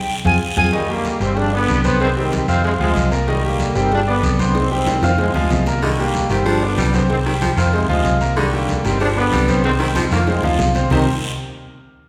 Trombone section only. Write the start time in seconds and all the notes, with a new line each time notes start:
0.73 A#2 G3
0.90 D3 A#3
1.22 D#3 C4
1.38 F3 D4
1.54 D3 B3
1.85 D3 B3
2.02 D#3 C4
2.17 D#3 C4
2.49 D#3 C4
2.65 C3 G#3
2.81 C3 G#3
3.28 A#2 G3
3.45 D3 A#3
3.77 D#3 C4
3.93 F3 D4
4.09 D3 B3
4.40 D3 B3
4.56 D#3 C4
4.73 D#3 C4
5.04 D#3 C4
5.20 C3 G#3
5.36 C3 G#3
5.84 A#2 G3
5.99 D3 A#3
6.31 D#3 C4
6.46 F3 D4
6.63 D3 B3
6.94 D3 B3
7.10 D#3 C4
7.58 D#3 C4
7.74 C3 G#3
7.89 C3 G#3
8.37 A#2 G3
8.53 D3 A#3
8.86 D#3 C4
9.01 F3 D4
9.17 D3 B3
9.65 D#3 C4
9.82 D#3 C4
10.13 D3 A#3
10.29 C3 G#3
10.91 D#3